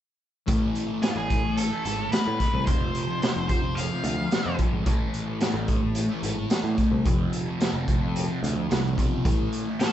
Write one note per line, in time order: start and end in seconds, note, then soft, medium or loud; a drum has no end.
0.46 0.69 A1 medium
0.46 1.01 A2 medium
0.46 0.90 E3 medium
0.46 0.86 A3 medium
0.46 kick loud
0.46 closed hi-hat medium
0.75 closed hi-hat medium
0.87 1.05 A3 medium
0.91 1.03 E3 soft
1.02 1.27 A2 medium
1.02 1.29 E3 medium
1.02 1.10 G#4 medium
1.02 snare loud
1.02 closed hi-hat medium
1.06 1.31 A3 loud
1.10 1.16 F4 medium
1.16 1.69 A1 medium
1.16 1.59 G#4 medium
1.29 1.71 A2 medium
1.29 1.43 E3 medium
1.29 1.43 A3 medium
1.29 kick medium
1.29 closed hi-hat medium
1.44 muted distorted electric guitar stroke soft
1.57 2.11 A4 medium
1.57 closed hi-hat medium
1.70 1.86 E3 medium
1.70 1.87 A3 medium
1.85 2.07 G#1 medium
1.85 2.10 A2 medium
1.85 1.98 E3 medium
1.85 1.97 A3 medium
1.85 closed hi-hat medium
1.98 muted distorted electric guitar stroke soft
2.12 2.36 A2 medium
2.12 2.27 E3 medium
2.12 2.23 A3 medium
2.12 2.66 B4 medium
2.12 snare medium
2.12 closed hi-hat medium
2.25 2.37 A2 medium
2.25 2.38 E3 medium
2.25 2.39 A3 medium
2.37 2.64 A2 medium
2.37 2.65 E3 medium
2.37 2.66 A3 medium
2.37 kick medium
2.37 closed hi-hat medium
2.54 2.64 C2 medium
2.65 2.89 F1 medium
2.65 3.19 F2 medium
2.65 3.09 C3 medium
2.65 3.05 F3 medium
2.65 3.48 C5 medium
2.65 kick loud
2.65 closed hi-hat medium
2.95 closed hi-hat medium
3.06 3.21 C3 medium
3.06 3.22 F3 medium
3.20 3.46 F2 medium
3.20 3.48 C3 medium
3.20 3.50 F3 medium
3.20 snare loud
3.20 closed hi-hat medium
3.36 3.89 F1 medium
3.48 3.90 F2 medium
3.48 3.61 C3 medium
3.48 3.60 F3 medium
3.48 3.78 C5 medium
3.48 kick medium
3.48 closed hi-hat medium
3.62 muted distorted electric guitar stroke soft
3.75 4.54 F5 medium
3.75 closed hi-hat medium
3.90 4.04 C3 medium
3.90 4.05 F3 medium
4.03 4.25 D2 medium
4.03 4.29 F2 medium
4.03 4.17 C3 medium
4.03 4.16 F3 medium
4.03 closed hi-hat medium
4.17 muted distorted electric guitar stroke soft
4.30 4.57 F2 medium
4.30 4.46 C3 medium
4.30 snare loud
4.30 closed hi-hat medium
4.34 4.43 F3 loud
4.44 4.56 F2 medium
4.44 4.59 C3 medium
4.44 4.60 F3 medium
4.58 4.85 F2 medium
4.58 4.84 C3 medium
4.58 4.86 F3 medium
4.58 kick medium
4.58 closed hi-hat medium
4.73 4.84 G#1 medium
4.84 5.08 A1 medium
4.84 5.38 A2 medium
4.84 5.29 E3 medium
4.84 5.25 A3 loud
4.84 kick loud
4.84 closed hi-hat medium
5.14 closed hi-hat medium
5.27 5.40 E3 medium
5.27 5.42 A3 medium
5.40 5.65 A2 medium
5.40 5.67 E3 medium
5.40 5.69 A3 loud
5.40 snare medium
5.40 closed hi-hat medium
5.54 6.08 A1 medium
5.66 6.09 A2 medium
5.66 5.80 E3 medium
5.66 5.80 A3 medium
5.66 kick medium
5.66 closed hi-hat medium
5.81 muted distorted electric guitar stroke soft
5.95 closed hi-hat medium
6.09 6.22 E3 medium
6.09 6.24 A3 medium
6.22 6.45 G#1 medium
6.22 6.49 A2 medium
6.22 6.36 E3 medium
6.22 6.35 A3 medium
6.22 closed hi-hat medium
6.36 muted distorted electric guitar stroke soft
6.50 6.77 A2 medium
6.50 6.66 E3 medium
6.50 6.62 A3 medium
6.50 snare loud
6.50 closed hi-hat medium
6.63 6.75 A2 medium
6.63 6.79 E3 medium
6.63 6.81 A3 medium
6.78 7.04 A2 medium
6.78 7.05 E3 medium
6.78 kick medium
6.78 closed hi-hat medium
6.82 7.06 A3 medium
6.91 7.03 C2 medium
7.05 7.27 F1 medium
7.05 7.57 F2 medium
7.05 7.48 C3 medium
7.05 7.44 F3 loud
7.05 kick loud
7.05 closed hi-hat medium
7.33 closed hi-hat medium
7.45 7.59 C3 medium
7.45 7.61 F3 medium
7.59 7.85 F2 medium
7.59 7.87 C3 medium
7.59 7.88 F3 medium
7.59 snare medium
7.59 closed hi-hat medium
7.73 8.27 F1 medium
7.86 8.28 F2 medium
7.86 8.00 C3 medium
7.86 7.99 F3 medium
7.86 kick medium
7.86 closed hi-hat medium
8.01 muted distorted electric guitar stroke soft
8.16 closed hi-hat medium
8.27 8.42 C3 medium
8.27 8.43 F3 medium
8.41 8.68 D2 medium
8.41 8.67 F2 medium
8.41 8.55 C3 medium
8.41 8.54 F3 medium
8.41 closed hi-hat medium
8.55 muted distorted electric guitar stroke soft
8.68 8.95 C2 medium
8.68 8.95 F2 medium
8.68 8.84 C3 medium
8.68 8.81 F3 loud
8.68 snare medium
8.68 closed hi-hat medium
8.82 8.97 C3 medium
8.82 8.98 F3 medium
8.96 9.23 B1 medium
8.96 9.23 F2 medium
8.96 9.24 C3 medium
8.96 9.25 F3 medium
8.96 kick medium
8.96 closed hi-hat medium
9.24 9.47 A1 medium
9.24 9.78 A2 medium
9.24 9.68 E3 medium
9.24 kick loud
9.24 closed hi-hat medium
9.28 9.65 A3 medium
9.53 closed hi-hat medium
9.67 9.80 E3 soft
9.67 9.81 A3 medium
9.80 9.93 A2 medium
9.80 9.93 E3 medium
9.80 9.93 A3 medium
9.80 9.93 A4 medium
9.80 snare loud
9.80 closed hi-hat medium